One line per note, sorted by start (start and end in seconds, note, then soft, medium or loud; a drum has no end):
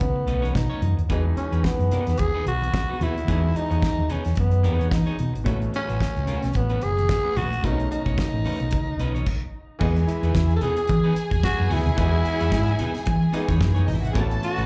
0.00 0.23 C#2 medium
0.00 1.06 C#3 medium
0.00 1.06 A3 medium
0.00 0.56 B3 medium
0.00 1.07 B3 medium
0.00 1.10 D#4 medium
0.00 muted clean electric guitar stroke soft
0.00 kick medium
0.00 high conga medium
0.16 muted clean electric guitar stroke soft
0.27 0.50 B1 loud
0.27 0.42 A3 medium
0.27 0.42 C#4 medium
0.27 0.41 D#4 medium
0.27 0.42 B4 medium
0.27 closed hi-hat medium
0.27 muted conga soft
0.42 0.53 A3 medium
0.42 0.53 C#4 medium
0.42 0.54 D#4 medium
0.42 0.53 C#5 medium
0.42 closed hi-hat soft
0.42 high conga medium
0.54 0.68 B2 medium
0.54 0.97 D#4 medium
0.54 muted clean electric guitar stroke soft
0.54 kick loud
0.54 snare loud
0.70 0.81 A3 medium
0.70 0.82 C#4 medium
0.70 0.82 D#4 medium
0.70 0.83 C#5 medium
0.82 0.94 F#2 medium
0.82 muted clean electric guitar stroke soft
0.82 closed hi-hat medium
0.82 muted conga soft
0.82 high conga medium
0.82 low conga medium
0.97 1.10 D#2 medium
0.97 muted clean electric guitar stroke soft
0.97 closed hi-hat soft
1.09 1.32 E2 loud
1.09 3.24 B2 medium
1.09 3.24 E3 medium
1.09 3.25 G#3 medium
1.09 1.27 B3 medium
1.09 1.24 D#4 medium
1.09 3.25 D#4 medium
1.09 1.24 G#4 medium
1.09 1.24 B4 medium
1.09 kick loud
1.09 closed hi-hat medium
1.25 muted clean electric guitar stroke medium
1.36 1.66 C#4 medium
1.36 muted clean electric guitar stroke soft
1.36 closed hi-hat medium
1.36 muted conga soft
1.36 high conga soft
1.52 1.62 E2 medium
1.52 1.64 B3 soft
1.52 1.64 D#4 medium
1.52 1.63 G#4 medium
1.52 1.63 B4 medium
1.52 closed hi-hat soft
1.64 2.21 B3 medium
1.64 kick loud
1.64 snare loud
1.64 muted conga soft
1.79 1.89 F#2 medium
1.79 muted clean electric guitar stroke soft
1.79 closed hi-hat soft
1.91 2.13 B3 medium
1.91 2.07 D#4 medium
1.91 2.06 G#4 medium
1.91 2.06 B4 medium
1.91 closed hi-hat medium
1.91 low conga medium
2.07 2.17 E2 medium
2.07 muted clean electric guitar stroke soft
2.07 snare soft
2.07 closed hi-hat soft
2.17 2.41 D#2 loud
2.17 2.46 G#4 loud
2.17 muted clean electric guitar stroke soft
2.17 kick loud
2.17 closed hi-hat medium
2.17 high conga medium
2.35 2.45 B3 medium
2.35 2.46 D#4 medium
2.35 2.46 G#4 medium
2.35 2.46 B4 medium
2.46 2.68 B1 loud
2.46 3.05 F#4 loud
2.46 muted clean electric guitar stroke soft
2.46 closed hi-hat medium
2.62 muted clean electric guitar stroke medium
2.62 closed hi-hat soft
2.62 high conga medium
2.74 muted clean electric guitar stroke soft
2.74 kick loud
2.74 snare loud
2.89 3.00 B3 medium
2.89 3.00 D#4 medium
2.89 3.00 G#4 medium
2.89 3.00 B4 medium
3.01 3.23 D#2 medium
3.01 3.18 B3 medium
3.01 3.16 D#4 medium
3.01 3.58 E4 loud
3.01 3.15 G#4 medium
3.01 3.15 B4 medium
3.01 closed hi-hat medium
3.01 muted conga soft
3.01 high conga medium
3.01 low conga medium
3.16 muted clean electric guitar stroke soft
3.16 closed hi-hat soft
3.27 3.50 E2 loud
3.27 5.41 B2 medium
3.27 5.42 E3 medium
3.27 5.42 G#3 medium
3.27 3.45 B3 medium
3.27 3.43 D#4 medium
3.27 5.43 D#4 medium
3.27 3.42 G#4 medium
3.27 3.42 B4 medium
3.27 kick loud
3.27 closed hi-hat medium
3.43 muted clean electric guitar stroke medium
3.55 4.13 D#4 loud
3.55 muted clean electric guitar stroke soft
3.55 closed hi-hat medium
3.55 muted conga soft
3.55 high conga soft
3.70 3.80 E2 loud
3.70 3.82 B3 soft
3.70 3.82 D#4 medium
3.70 3.81 G#4 medium
3.70 3.81 C#5 medium
3.70 closed hi-hat soft
3.82 kick loud
3.82 snare loud
3.82 muted conga soft
3.97 4.08 D#2 medium
3.97 muted clean electric guitar stroke soft
4.09 4.27 B3 medium
4.09 4.38 C#4 medium
4.09 4.25 D#4 medium
4.09 4.24 G#4 medium
4.09 4.24 B4 loud
4.09 closed hi-hat medium
4.09 muted conga soft
4.09 low conga medium
4.25 4.35 E2 medium
4.25 muted clean electric guitar stroke medium
4.25 snare soft
4.25 closed hi-hat soft
4.35 4.65 F#2 medium
4.35 4.94 B3 medium
4.35 muted clean electric guitar stroke soft
4.35 kick loud
4.35 closed hi-hat medium
4.35 muted conga soft
4.35 high conga medium
4.51 muted clean electric guitar stroke soft
4.51 closed hi-hat soft
4.63 4.87 E2 loud
4.63 4.79 B3 medium
4.63 4.79 D#4 medium
4.63 4.78 G#4 loud
4.63 4.78 B4 medium
4.63 closed hi-hat medium
4.79 4.90 B3 medium
4.79 4.90 D#4 medium
4.79 4.90 G#4 medium
4.79 4.90 C#5 medium
4.79 closed hi-hat soft
4.79 high conga medium
4.91 5.04 E3 medium
4.91 5.35 D#4 medium
4.91 kick loud
4.91 snare loud
5.06 5.17 B3 medium
5.06 5.17 D#4 medium
5.06 5.18 G#4 medium
5.06 5.19 C#5 medium
5.06 closed hi-hat soft
5.18 5.31 B2 medium
5.18 muted clean electric guitar stroke soft
5.18 closed hi-hat medium
5.18 high conga medium
5.18 low conga medium
5.33 5.44 G#1 medium
5.33 muted clean electric guitar stroke medium
5.33 closed hi-hat soft
5.44 5.68 A1 loud
5.44 7.59 B2 medium
5.44 7.59 F#3 medium
5.44 5.62 A3 medium
5.44 7.60 A3 medium
5.44 5.60 C#4 medium
5.44 7.60 C#4 medium
5.44 5.60 F#4 medium
5.44 5.59 B4 medium
5.44 kick loud
5.44 closed hi-hat medium
5.60 muted clean electric guitar stroke medium
5.60 closed hi-hat soft
5.72 6.58 C#4 loud
5.72 muted clean electric guitar stroke soft
5.72 closed hi-hat medium
5.72 high conga soft
5.87 5.99 A1 loud
5.87 5.99 A3 soft
5.87 5.99 C#4 soft
5.87 5.99 F#4 medium
5.87 5.99 B4 medium
5.87 closed hi-hat soft
6.00 kick medium
6.00 snare loud
6.15 6.26 C#2 medium
6.15 muted clean electric guitar stroke soft
6.15 closed hi-hat soft
6.27 6.48 A3 medium
6.27 6.42 C#4 medium
6.27 6.42 F#4 medium
6.27 6.41 B4 medium
6.27 closed hi-hat medium
6.27 muted conga soft
6.27 low conga medium
6.42 6.53 B1 medium
6.42 muted clean electric guitar stroke medium
6.42 snare soft
6.42 closed hi-hat soft
6.53 6.77 A1 medium
6.53 6.85 B3 medium
6.53 muted clean electric guitar stroke soft
6.53 kick medium
6.53 closed hi-hat medium
6.53 muted conga soft
6.53 high conga medium
6.69 6.81 A3 medium
6.69 6.81 C#4 medium
6.69 6.81 F#4 medium
6.69 6.82 B4 medium
6.69 closed hi-hat soft
6.81 7.04 F#1 medium
6.81 7.39 G#4 loud
6.81 muted clean electric guitar stroke soft
6.81 closed hi-hat medium
6.97 muted clean electric guitar stroke medium
6.97 closed hi-hat soft
6.97 high conga medium
7.09 muted clean electric guitar stroke soft
7.09 kick loud
7.09 snare loud
7.09 muted conga soft
7.23 7.35 A3 soft
7.23 7.35 C#4 medium
7.23 7.35 F#4 medium
7.23 7.35 B4 medium
7.36 7.59 A#1 medium
7.36 7.53 A3 medium
7.36 7.51 C#4 medium
7.36 7.51 F#4 medium
7.36 7.66 F#4 loud
7.36 7.50 B4 medium
7.36 closed hi-hat medium
7.36 high conga medium
7.36 low conga medium
7.51 muted clean electric guitar stroke soft
7.51 closed hi-hat soft
7.62 7.86 B1 loud
7.62 9.23 B2 medium
7.62 9.23 D#3 medium
7.62 7.80 A3 medium
7.62 9.24 A3 medium
7.62 7.72 C4 medium
7.62 7.79 C#4 medium
7.62 7.78 D#4 medium
7.62 7.90 D#4 medium
7.62 7.78 B4 medium
7.62 kick loud
7.62 closed hi-hat medium
7.62 muted conga soft
7.71 9.28 C#4 medium
7.79 muted clean electric guitar stroke medium
7.79 closed hi-hat soft
7.91 9.50 D#4 medium
7.91 muted clean electric guitar stroke soft
7.91 closed hi-hat medium
7.91 muted conga soft
7.91 high conga soft
8.06 8.16 B1 medium
8.06 8.17 A3 soft
8.06 8.17 C#4 soft
8.06 8.17 D#4 soft
8.06 8.17 C#5 medium
8.06 kick medium
8.06 closed hi-hat soft
8.18 kick loud
8.18 snare loud
8.33 8.43 A1 medium
8.33 muted clean electric guitar stroke soft
8.45 8.62 A3 medium
8.45 8.60 C#4 medium
8.45 8.59 D#4 medium
8.45 8.59 B4 loud
8.45 open hi-hat medium
8.45 low conga medium
8.60 8.72 B1 medium
8.60 muted clean electric guitar stroke soft
8.60 closed hi-hat soft
8.71 8.94 C#2 medium
8.71 muted clean electric guitar stroke soft
8.71 kick loud
8.71 closed hi-hat medium
8.71 high conga medium
8.87 muted clean electric guitar stroke soft
8.99 9.21 B1 medium
8.99 9.15 A3 medium
8.99 9.14 C#4 medium
8.99 9.13 D#4 medium
8.99 9.14 B4 medium
8.99 closed hi-hat medium
8.99 muted conga soft
9.14 9.26 A3 medium
9.14 9.26 C#4 medium
9.14 9.25 D#4 medium
9.14 9.25 C#5 medium
9.14 closed hi-hat soft
9.14 high conga medium
9.26 kick loud
9.26 crash medium
9.79 10.03 E2 loud
9.79 11.93 E3 medium
9.79 11.93 G#3 medium
9.79 9.98 B3 medium
9.79 11.94 B3 medium
9.79 9.95 D#4 medium
9.79 13.79 G#4 loud
9.79 9.95 G#4 medium
9.79 11.94 G#4 medium
9.79 9.94 B4 medium
9.79 11.94 D#5 medium
9.79 13.79 G#5 loud
9.79 kick loud
9.79 crash medium
9.96 muted clean electric guitar stroke medium
9.96 closed hi-hat soft
10.08 10.53 E4 medium
10.08 muted clean electric guitar stroke soft
10.08 closed hi-hat medium
10.23 10.33 E2 medium
10.23 10.35 B3 medium
10.23 10.35 D#4 medium
10.23 10.34 G#4 medium
10.23 10.34 B4 medium
10.23 closed hi-hat soft
10.35 10.57 E2 medium
10.35 kick loud
10.35 snare loud
10.35 muted conga soft
10.50 muted clean electric guitar stroke medium
10.50 closed hi-hat soft
10.56 10.64 A4 medium
10.61 10.79 B3 medium
10.61 10.77 D#4 medium
10.61 11.17 G#4 loud
10.61 10.77 G#4 medium
10.61 10.76 B4 medium
10.61 closed hi-hat medium
10.61 low conga medium
10.77 muted clean electric guitar stroke medium
10.77 closed hi-hat medium
10.87 11.11 E3 loud
10.87 muted clean electric guitar stroke soft
10.87 kick loud
10.87 closed hi-hat medium
10.87 muted conga soft
10.87 high conga medium
11.04 11.14 B3 medium
11.04 11.14 D#4 medium
11.04 11.15 G#4 medium
11.04 11.15 B4 medium
11.16 muted clean electric guitar stroke soft
11.16 closed hi-hat medium
11.30 11.41 E2 medium
11.30 muted clean electric guitar stroke soft
11.30 kick medium
11.30 closed hi-hat soft
11.30 high conga medium
11.43 11.66 F#4 loud
11.43 muted clean electric guitar stroke soft
11.43 kick loud
11.43 snare loud
11.43 muted conga soft
11.57 11.69 F#2 medium
11.57 11.68 B3 medium
11.57 11.69 D#4 medium
11.57 11.69 G#4 medium
11.57 11.69 B4 medium
11.66 11.87 B3 loud
11.66 11.74 F#4 medium
11.70 11.83 D2 medium
11.70 11.84 D#4 medium
11.70 13.34 E4 loud
11.70 11.84 G#4 medium
11.70 11.83 B4 medium
11.70 open hi-hat medium
11.70 muted conga soft
11.70 high conga medium
11.70 low conga medium
11.84 11.98 D#2 medium
11.84 muted clean electric guitar stroke medium
11.84 closed hi-hat soft
11.84 low conga medium
11.96 12.20 E2 loud
11.96 13.30 E3 medium
11.96 13.30 G#3 medium
11.96 12.14 B3 medium
11.96 13.31 B3 medium
11.96 12.12 D#4 medium
11.96 12.06 F#4 medium
11.96 12.11 G#4 medium
11.96 12.11 B4 medium
11.96 13.31 D#5 medium
11.96 kick loud
11.96 closed hi-hat medium
12.06 13.33 G#4 medium
12.12 muted clean electric guitar stroke medium
12.24 muted clean electric guitar stroke medium
12.24 closed hi-hat medium
12.39 12.52 E2 medium
12.39 12.51 B3 medium
12.39 12.51 D#4 medium
12.39 12.51 G#4 medium
12.39 12.50 C#5 medium
12.39 closed hi-hat soft
12.52 12.74 G#2 loud
12.52 kick loud
12.52 snare loud
12.67 muted clean electric guitar stroke medium
12.67 closed hi-hat soft
12.79 12.96 B3 medium
12.79 12.94 D#4 medium
12.79 12.93 G#4 medium
12.79 12.93 B4 loud
12.79 closed hi-hat medium
12.79 muted conga soft
12.79 low conga medium
12.94 muted clean electric guitar stroke medium
12.94 snare soft
12.94 closed hi-hat medium
13.05 13.28 E3 loud
13.05 muted clean electric guitar stroke soft
13.05 kick loud
13.05 closed hi-hat medium
13.05 muted conga soft
13.05 high conga medium
13.21 muted clean electric guitar stroke soft
13.33 14.12 E3 medium
13.33 14.15 G#3 medium
13.33 13.48 B3 medium
13.33 14.13 B3 medium
13.33 13.48 D#4 medium
13.33 14.15 D#4 medium
13.33 13.48 G#4 loud
13.33 14.15 G#4 medium
13.33 13.48 B4 medium
13.33 closed hi-hat medium
13.33 muted conga soft
13.48 13.61 E2 medium
13.48 13.59 B3 medium
13.48 13.59 D#4 medium
13.48 13.59 G#4 medium
13.48 13.59 C#5 medium
13.48 kick loud
13.48 closed hi-hat medium
13.48 high conga loud
13.60 13.82 F#2 loud
13.60 muted clean electric guitar stroke soft
13.60 kick loud
13.60 snare loud
13.75 13.86 B3 medium
13.75 13.86 D#4 medium
13.75 13.86 G#4 medium
13.75 13.88 C#5 medium
13.75 closed hi-hat soft
13.87 14.10 G#1 medium
13.87 13.95 D#4 medium
13.87 13.95 D#5 medium
13.87 muted clean electric guitar stroke soft
13.87 open hi-hat medium
13.87 muted conga soft
13.87 high conga medium
13.87 low conga medium
13.96 14.03 E4 medium
13.96 14.03 E5 medium
14.02 14.09 F#4 medium
14.02 14.09 F#5 loud
14.02 muted clean electric guitar stroke medium
14.02 closed hi-hat medium
14.02 low conga medium
14.10 14.66 E3 medium
14.10 14.15 G#4 medium
14.10 14.15 G#5 loud
14.14 14.37 A1 loud
14.14 14.35 A3 medium
14.14 14.66 A3 medium
14.14 14.66 B3 medium
14.14 14.30 C#4 medium
14.14 14.66 C#4 medium
14.14 14.29 F#4 loud
14.14 14.66 F#4 medium
14.14 14.66 A4 loud
14.14 14.29 B4 loud
14.14 14.66 A5 loud
14.14 kick loud
14.14 closed hi-hat medium
14.30 muted clean electric guitar stroke soft
14.30 closed hi-hat soft
14.42 14.66 F#4 loud
14.42 muted clean electric guitar stroke soft
14.42 closed hi-hat medium
14.42 muted conga soft
14.57 14.66 A1 loud
14.57 14.66 A3 medium
14.57 14.66 C#4 medium
14.57 14.66 F#4 medium
14.57 14.66 B4 medium
14.57 closed hi-hat soft